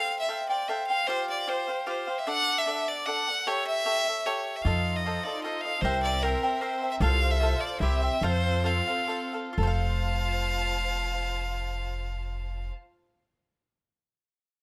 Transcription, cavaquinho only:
0.00 0.27 A4 medium
0.00 0.28 C5 medium
0.00 0.28 F5 medium
0.00 0.28 G5 medium
0.29 0.49 A4 soft
0.29 0.49 C5 medium
0.29 0.49 F5 medium
0.29 0.48 G5 medium
0.49 0.68 C5 soft
0.49 0.68 F5 soft
0.49 0.68 G5 soft
0.69 0.89 A4 medium
0.69 0.89 C5 medium
0.69 0.89 F5 medium
0.69 0.89 G5 medium
0.90 1.08 C5 soft
0.90 1.08 F5 soft
0.90 1.08 G5 soft
1.08 1.46 F4 medium
1.08 1.47 G4 medium
1.08 1.48 C5 medium
1.08 1.48 F5 medium
1.47 1.68 F4 medium
1.47 1.68 G4 medium
1.47 1.68 C5 medium
1.47 1.67 F5 medium
1.68 1.86 G4 soft
1.68 1.86 C5 soft
1.68 1.86 F5 soft
1.86 2.07 F4 medium
1.86 2.07 G4 medium
1.86 2.07 C5 medium
1.86 2.06 F5 medium
2.07 2.27 G4 soft
2.07 2.26 C5 soft
2.07 2.26 F5 soft
2.27 2.65 D4 medium
2.27 2.67 A4 medium
2.27 2.66 D5 medium
2.27 2.66 F#5 medium
2.66 3.05 D4 medium
2.66 3.07 A4 medium
2.66 3.06 D5 medium
2.66 3.06 F#5 medium
3.06 3.26 D4 medium
3.06 3.27 A4 medium
3.06 3.27 D5 medium
3.06 3.27 F#5 medium
3.28 3.46 D5 soft
3.28 3.46 F#5 soft
3.47 3.84 G4 medium
3.47 3.85 A4 medium
3.47 3.84 C#5 medium
3.47 3.85 E5 medium
3.85 4.06 G4 medium
3.85 4.06 A4 medium
3.85 4.06 C#5 medium
3.85 4.06 E5 medium
4.08 4.25 A4 soft
4.08 4.25 C#5 soft
4.08 4.26 E5 soft
4.26 4.64 G4 medium
4.26 4.65 A4 medium
4.26 4.65 C#5 medium
4.26 4.66 E5 medium
4.65 5.04 F4 medium
4.65 5.05 A4 medium
4.65 5.06 C5 medium
4.65 5.05 D#5 medium
5.06 5.26 F4 medium
5.06 5.25 A4 medium
5.06 5.24 C5 medium
5.06 5.24 D#5 medium
5.25 5.43 A4 soft
5.25 5.44 C5 soft
5.25 5.44 D#5 soft
5.44 5.65 F4 medium
5.44 5.65 A4 medium
5.44 5.65 C5 medium
5.44 5.64 D#5 medium
5.65 5.84 A4 soft
5.65 5.83 C5 soft
5.65 5.84 D#5 soft
5.84 6.22 A#4 medium
5.84 6.23 C5 medium
5.84 6.23 E5 medium
5.84 6.23 G5 medium
6.23 6.43 A#4 medium
6.23 6.43 C5 medium
6.23 6.43 E5 medium
6.23 6.42 G5 medium
6.43 6.61 C5 soft
6.43 6.61 E5 soft
6.43 6.62 G5 soft
6.61 6.82 A#4 medium
6.61 6.82 C5 medium
6.61 6.82 E5 medium
6.61 6.81 G5 medium
6.82 7.01 C5 soft
6.82 7.02 E5 soft
6.82 7.01 G5 soft
7.01 7.39 F4 medium
7.01 7.41 A4 medium
7.01 7.42 C5 medium
7.01 7.42 F5 medium
7.41 7.81 F4 medium
7.41 7.82 A4 medium
7.41 7.82 C5 medium
7.41 7.82 F5 medium
7.81 8.02 E4 medium
7.81 8.02 G4 medium
7.81 8.02 C5 medium
7.81 8.01 E5 medium
8.02 8.22 G4 soft
8.02 8.22 C5 soft
8.02 8.22 E5 medium
8.23 8.63 F4 medium
8.23 8.64 A4 medium
8.23 8.65 C5 medium
8.23 8.66 F5 medium
8.64 8.88 F4 medium
8.64 8.88 A4 medium
8.64 8.88 C5 medium
8.64 8.86 F5 medium
8.87 9.06 A4 soft
8.87 9.08 C5 soft
8.87 9.08 F5 soft
9.08 9.34 F4 medium
9.08 9.33 A4 medium
9.08 9.33 C5 medium
9.08 9.32 F5 medium
9.33 9.57 A4 soft
9.33 9.57 C5 soft
9.33 9.57 F5 medium
9.53 13.03 F4 medium
9.58 13.08 A4 medium
9.63 13.13 C5 medium
9.67 13.17 F5 medium

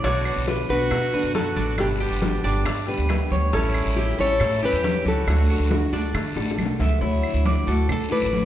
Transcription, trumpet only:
0.03 0.44 F#4 medium
0.69 1.31 F#4 loud
1.35 1.75 F#4 medium
1.79 1.88 D4 medium
2.01 2.62 D4 medium
3.54 4.15 E4 medium
4.20 4.60 A4 loud
4.63 5.03 G4 medium
5.08 5.90 F#4 medium

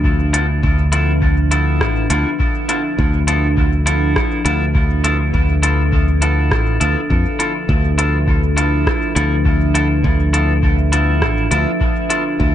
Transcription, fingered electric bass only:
0.00 0.61 D2 medium
0.63 1.81 D2 medium
1.81 2.07 A1 medium
2.10 2.24 D2 medium
2.99 4.14 D2 medium
4.45 5.31 D2 medium
5.34 6.51 D2 medium
6.51 6.78 A1 medium
6.81 6.95 D2 medium
7.10 7.24 F2 medium
7.69 8.84 D2 medium
9.16 10.02 D2 medium
10.04 11.22 D2 medium
11.22 11.48 A1 medium
11.51 11.65 D2 medium
12.40 12.55 D2 medium

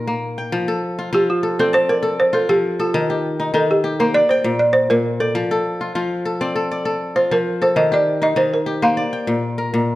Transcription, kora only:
0.00 0.58 A#2 medium
0.00 0.80 D#4 medium
0.00 0.74 A#4 medium
0.00 0.31 F5 medium
0.07 0.74 A#3 medium
0.38 1.31 G5 medium
0.52 1.12 F3 medium
0.68 1.43 A4 medium
0.99 1.12 F4 medium
1.13 2.48 F3 medium
1.13 2.32 F4 medium
1.43 2.02 A4 medium
1.59 3.39 C4 medium
1.59 1.89 D5 medium
1.73 2.60 A5 medium
1.89 3.00 D5 medium
2.03 2.79 A4 medium
2.33 3.84 F4 medium
2.49 2.99 F3 medium
2.79 4.06 A4 medium
2.94 3.53 D#3 medium
3.10 3.83 G4 medium
3.40 3.54 D#4 medium
3.54 4.20 D#3 medium
3.54 4.21 D#4 medium
3.84 5.25 G4 medium
4.00 5.57 A#3 medium
4.00 5.19 C5 medium
4.15 5.20 D5 medium
4.31 5.24 G5 medium
4.44 4.89 A#2 medium
4.91 5.41 A#2 medium
5.20 6.31 D5 medium
5.35 5.94 F3 medium
5.51 6.25 A4 medium
5.81 5.95 F4 medium
5.95 7.30 F3 medium
5.95 7.15 F4 medium
6.25 6.55 A4 medium
6.41 8.21 C4 medium
6.41 6.71 D5 medium
6.56 6.85 A4 medium
6.71 7.82 D5 medium
6.85 7.61 A4 medium
7.16 8.67 F4 medium
7.31 7.82 F3 medium
7.62 8.88 A4 medium
7.76 8.35 D#3 medium
7.92 8.66 G4 medium
8.22 8.36 D#4 medium
8.36 9.03 D#3 medium
8.36 9.03 D#4 medium
8.66 9.95 G4 medium
8.82 9.95 A#3 medium
8.82 9.95 C5 medium
8.97 9.95 D5 medium
9.13 9.95 G5 medium
9.27 9.72 A#2 medium
9.58 9.95 A#4 medium
9.74 9.95 A#2 medium

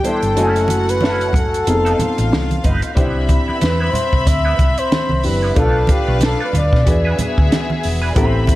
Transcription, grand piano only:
0.04 0.36 G3 soft
0.04 0.36 B3 soft
0.04 0.37 D4 soft
0.04 0.35 E4 soft
0.36 1.64 A3 medium
0.36 1.64 C#4 medium
0.36 1.64 E4 medium
0.36 0.44 F#4 soft
0.45 1.68 G#5 medium
1.67 2.94 B3 medium
1.67 2.94 C4 soft
1.67 2.95 D#4 soft
1.67 1.75 G#4 soft
1.75 2.98 A4 medium
2.95 5.20 D4 medium
2.95 5.20 E4 medium
2.95 5.20 G4 medium
2.95 5.21 C5 medium
5.23 5.54 D4 soft
5.23 5.57 E4 soft
5.23 5.57 G4 soft
5.23 5.56 B4 soft
5.55 6.83 D4 medium
5.55 6.84 F4 medium
5.55 6.84 A4 medium
5.55 6.85 B4 medium
6.86 8.14 D4 medium
6.86 8.14 F#4 medium
6.86 8.14 G#4 medium
6.86 8.15 B4 medium
8.15 8.24 B3 medium
8.15 8.55 E4 medium
8.15 8.55 G4 medium
8.15 8.55 A4 medium
8.21 8.55 C4 medium

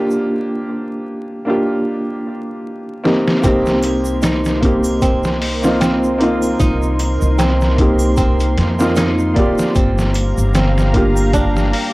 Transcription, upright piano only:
0.00 1.45 A#3 medium
0.00 1.47 D4 medium
0.00 1.48 F4 medium
0.00 1.50 G4 loud
1.45 3.00 A#3 medium
1.45 3.00 D4 medium
1.45 3.01 F4 medium
1.50 3.02 G4 medium
3.04 3.40 A#3 medium
3.04 3.42 C4 medium
3.04 3.43 D#4 medium
3.04 3.45 G4 loud
3.42 4.55 A#3 loud
3.42 4.55 C4 medium
3.42 4.56 D#4 medium
3.47 4.57 G4 loud
4.60 5.58 A#3 medium
4.60 5.59 C4 medium
4.60 5.60 D#4 medium
4.65 5.61 G4 medium
5.63 6.16 A#3 medium
5.63 6.16 C4 medium
5.63 6.17 D#4 medium
5.63 6.17 F4 loud
6.18 7.73 A#3 medium
6.18 7.74 C4 medium
6.18 7.75 D#4 medium
6.23 7.76 F4 loud
7.76 8.74 A#3 medium
7.76 8.75 C4 medium
7.76 8.76 D#4 medium
7.81 8.77 G4 medium
8.79 9.32 A#3 medium
8.79 9.32 C4 medium
8.79 9.33 D#4 medium
8.79 9.33 F4 loud
9.34 10.89 A#3 medium
9.34 10.91 F4 medium
9.34 10.90 D5 medium
9.39 10.91 G4 loud
10.92 11.90 A#3 medium
10.92 11.91 D4 medium
10.92 11.92 F4 medium
10.97 11.92 G4 medium

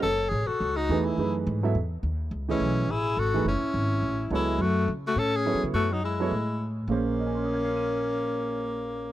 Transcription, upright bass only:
0.03 0.31 F#1 medium
0.31 0.48 A1 medium
0.49 muted upright bass stroke soft
0.60 0.88 C#2 medium
0.89 1.17 E2 medium
1.18 1.45 F#2 medium
1.47 1.74 G#2 loud
1.75 2.02 E2 medium
2.03 2.31 D#2 medium
2.31 2.59 C#2 medium
2.60 2.88 B1 medium
2.89 3.16 A1 medium
3.17 3.44 G#1 medium
3.45 3.61 F#1 medium
3.62 muted upright bass stroke soft
3.74 4.02 G#1 medium
4.02 4.30 A1 medium
4.30 4.58 C#2 medium
4.59 4.86 F#2 medium
4.88 5.15 C#3 medium
5.16 5.52 A2 medium
5.63 5.73 C#3 medium
5.74 6.28 F#2 medium
6.31 6.86 A2 medium
6.88 9.12 A#1 medium

